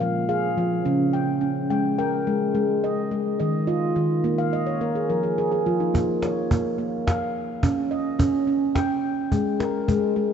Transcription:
Already playing: handpan A#3
0.00 handpan F3 F5
0.29 handpan G#4 F5
0.58 handpan F3
0.85 handpan C#3 C#4
1.13 handpan G5
1.41 handpan C#4
1.70 handpan G#3 G5
1.99 handpan A#4 G5
2.27 handpan G#3
2.55 handpan G#3
2.84 handpan D#5
3.11 handpan G#3
3.40 handpan D#3 D#5
3.67 handpan F4 D#5
3.96 handpan D#3
4.24 handpan A#3
4.38 handpan F5
4.53 handpan D#5
4.66 handpan C#5
4.81 handpan A#3 A#4
4.95 handpan G#4
5.10 handpan F3 A#4
5.23 handpan G#4
5.38 handpan G#4 A#4
5.52 handpan G#4
5.66 handpan F3 F4
5.80 handpan D#4
5.94 handpan A#3, cajon bass
6.22 handpan C#5, cajon slap
6.51 handpan A#3, cajon bass
6.78 handpan A#3
7.07 handpan F5, cajon bass, cajon slap
7.63 handpan C#4, cajon bass
7.91 handpan D#5
8.19 handpan C#4, cajon bass
8.47 handpan C#4
8.75 handpan G5, cajon bass, cajon slap
9.32 handpan G#3, cajon bass
9.60 handpan A#4, cajon slap
9.88 handpan G#3, cajon bass
10.16 handpan G#3

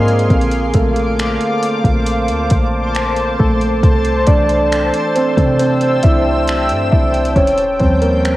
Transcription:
Already playing: 808-style bass G#2, synth keys A#3 C4 D#4 A#4 C5 D#5, ambient pad G#4 F5 C6 D6
0.08 closed hi-hat
0.19 closed hi-hat
0.30 808-style bass A#1, synth keys D3 C4 A4, ambient pad C5 F5 A5, kick, closed hi-hat
0.41 closed hi-hat
0.52 closed hi-hat
0.74 808-style bass A#1, synth keys A3 A4, kick, closed hi-hat
0.96 closed hi-hat
1.19 finger snap, closed hi-hat
1.41 closed hi-hat
1.63 closed hi-hat
1.84 808-style bass A#1, kick, closed hi-hat
2.06 ambient pad C6, closed hi-hat
2.28 808-style bass D2, closed hi-hat
2.50 808-style bass A#1, kick, closed hi-hat
2.95 finger snap, closed hi-hat
3.16 closed hi-hat
3.39 808-style bass A#1, synth keys A3 A4, kick
3.61 closed hi-hat
3.83 808-style bass C2, ambient pad G5 E6, kick, closed hi-hat
4.05 closed hi-hat
4.27 808-style bass C2, synth keys E3 A3 D4 D5, kick, closed hi-hat
4.49 closed hi-hat
4.72 finger snap, closed hi-hat
4.94 closed hi-hat
5.15 synth keys C4 C5, closed hi-hat
5.37 808-style bass C3, kick, closed hi-hat
5.59 synth keys C4 C5, closed hi-hat
5.81 closed hi-hat
6.03 808-style bass C2, synth keys E4 E5, kick, closed hi-hat
6.48 finger snap, closed hi-hat
6.69 808-style bass G2, closed hi-hat
6.91 808-style bass C2, synth keys E4 E5, kick
7.14 closed hi-hat
7.25 closed hi-hat
7.35 808-style bass D#1, synth keys C#4 C#5, ambient pad C#5 A#5, kick, closed hi-hat
7.47 closed hi-hat
7.58 closed hi-hat
7.80 808-style bass D#2, synth keys F3 G3 C4 C#4 C5, kick, closed hi-hat
8.02 synth keys A#3 A#4, closed hi-hat
8.25 finger snap, closed hi-hat

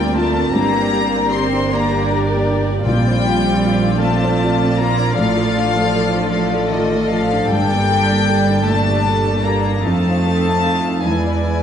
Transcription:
Already playing: double bass section D2, felt piano D2 C4 F4 A#4, cello section G3, viola section C4 F4, violin section A#4 D5 G5
0.00 felt piano A#3
0.14 cello section A3, felt piano F4, violin section A5
0.36 felt piano C4
0.53 double bass section G1, felt piano G2, cello section A#3, viola section G4, violin section A#4 D5 A#5
0.74 felt piano A#4
0.93 felt piano G4
1.13 felt piano A#3
1.31 cello section C4, felt piano G4, violin section C6
1.52 felt piano D4
1.70 cello section A#3, felt piano A#3, viola section D4 G4, violin section A#4 D5 A#5
1.91 felt piano A#4
2.11 felt piano G4
2.32 felt piano A#3
2.52 felt piano G4
2.70 felt piano D4
2.85 double bass section A#1, timpani A#2, cello section G3, viola section C4 F4, violin section F4 D5 G5
2.89 felt piano A#2
3.08 felt piano C5
3.28 felt piano F4
3.46 felt piano C4
3.65 felt piano F4
3.86 felt piano D4
4.01 cello section A3, violin section A5
4.05 felt piano C4
4.24 felt piano C5
4.44 felt piano F4
4.62 felt piano C4
4.77 cello section A#3, felt piano F4, violin section A#5
5.00 felt piano D4
5.15 double bass section A1, felt piano A2, cello section F3, viola section A3, violin section A4 F5
5.37 felt piano A4
5.57 felt piano D4
5.76 felt piano A3
5.96 felt piano A4
6.16 felt piano D4
6.31 cello section F3, violin section F5
6.35 felt piano A3
6.55 felt piano A4
6.70 cello section D#3, felt piano F4, violin section D#5
6.94 felt piano A3
7.09 cello section F3, felt piano A4, violin section F5
7.32 felt piano D4
7.47 double bass section G1, cello section G3, viola section G3 D4, violin section D5 G5
7.52 felt piano G2
7.71 felt piano A#3
7.90 felt piano A4
8.11 felt piano A#3
8.30 felt piano A4
8.50 felt piano D4
8.64 cello section A3, violin section A5
8.69 felt piano A#2
8.89 felt piano A4
9.08 felt piano A4
9.29 felt piano A#3
9.44 cello section A#3, felt piano G4, violin section A#5
9.69 felt piano D4
9.84 double bass section F2, felt piano F2, cello section A3, viola section C4 D#4, violin section F4 F5 A5
10.08 felt piano C5
10.26 felt piano A4
10.46 felt piano C4
10.66 felt piano A4
10.88 felt piano D#4
11.05 felt piano E2, double bass section E2, cello section G#3, viola section E4, violin section B4 D5 G#5
11.27 felt piano D5
11.48 felt piano B4

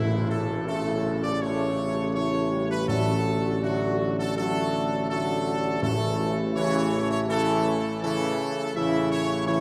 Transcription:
Already playing: tuba A1, timpani A2, trombone section C#3 A3, french horn section A3 E4, trumpet section E4
0.30 trumpet section A4
0.67 trombone section C#3 A3, french horn section A3 E4, trumpet section A4
1.23 trumpet section D5
1.40 trombone section C#3 A3, french horn section A3 E4, trumpet section C#5
2.15 trombone section C#3 A3, french horn section A3 E4, trumpet section C#5
2.51 trombone section G3
2.71 trumpet section B4
2.87 timpani A2, trombone section D3 F#3, french horn section A3 D4, trumpet section A4
3.62 trombone section D3 F#3, french horn section A3 D4, trumpet section F#4
4.19 trumpet section A4
4.36 trombone section D3 F#3, french horn section A3 D4, trumpet section A4
5.09 trombone section D3 F#3, french horn section A3 D4, trumpet section A4
5.81 tuba A1, timpani A2, trombone section C#3 E3, french horn section A3 E4, trumpet section A4
6.55 trombone section C#3 E3, french horn section A3 E4, trumpet section C#5
7.11 trumpet section C#5
7.28 trombone section C#3 E3, french horn section A3 E4, trumpet section A4
8.02 trombone section C#3 E3, french horn section A3 E4, trumpet section A4
8.75 tuba A1, trombone section C#3 E3, french horn section A3 E4, trumpet section E5
9.11 trumpet section C#5
9.46 trombone section C#3 E3, french horn section A3 E4, trumpet section C#5

